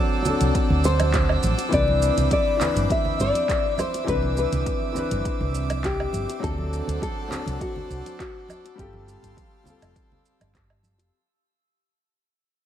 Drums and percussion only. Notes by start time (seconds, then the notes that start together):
0.25 high bongo, low conga, shaker
0.40 closed hi-hat, high conga, shaker
0.55 kick, closed hi-hat, shaker
0.70 low conga
0.84 shaker
1.00 closed hi-hat, high conga, low woodblock, shaker
1.14 kick, clap, closed hi-hat, high bongo, shaker
1.29 low woodblock
1.43 high conga, shaker
1.58 closed hi-hat, high bongo, shaker
1.73 kick, closed hi-hat, shaker
1.88 high conga
2.02 shaker
2.17 closed hi-hat, low conga, shaker
2.31 kick, closed hi-hat, high conga, shaker
2.61 clap, high bongo, low conga, shaker
2.76 closed hi-hat, high conga, shaker
2.90 kick, closed hi-hat, shaker
3.05 low conga
3.20 shaker
3.35 closed hi-hat, high bongo, high conga, shaker
3.49 kick, clap, closed hi-hat, shaker
3.78 high conga, low woodblock, shaker
3.94 closed hi-hat, high bongo, shaker
4.08 kick, closed hi-hat, shaker
4.22 high conga
4.36 high bongo, shaker
4.52 closed hi-hat, low conga, shaker
4.66 kick, closed hi-hat, high conga, shaker
4.95 high bongo, low conga, shaker
5.11 closed hi-hat, high conga, shaker
5.25 kick, closed hi-hat, shaker
5.41 low conga
5.55 shaker
5.70 closed hi-hat, high conga, low woodblock, shaker
5.84 kick, clap, closed hi-hat, high bongo, shaker
6.00 low woodblock
6.13 high conga, shaker
6.29 closed hi-hat, high bongo, shaker
6.43 kick, closed hi-hat, shaker
6.58 high conga
6.73 shaker
6.87 closed hi-hat, low conga, shaker
7.02 kick, closed hi-hat, high conga, shaker
7.31 clap, high bongo, low conga, shaker
7.46 closed hi-hat, high conga, shaker
7.61 kick, closed hi-hat, shaker
7.76 low conga
7.91 shaker
8.05 closed hi-hat, high bongo, high conga, shaker
8.20 kick, clap, closed hi-hat, shaker
8.49 high conga, low woodblock, shaker
8.64 closed hi-hat, high bongo, shaker
8.78 kick, closed hi-hat, shaker
8.93 high conga
9.08 high bongo, shaker
9.23 closed hi-hat, low conga, shaker
9.37 kick, closed hi-hat, high conga, shaker
9.65 high bongo, low conga, shaker
9.82 closed hi-hat, high conga, low woodblock, shaker
9.96 kick, closed hi-hat, shaker
10.12 low conga
10.25 shaker
10.40 closed hi-hat, high conga, low woodblock, shaker
10.55 kick, clap, closed hi-hat, high bongo, shaker
10.70 low woodblock
10.83 high conga, shaker
10.99 closed hi-hat, high bongo, shaker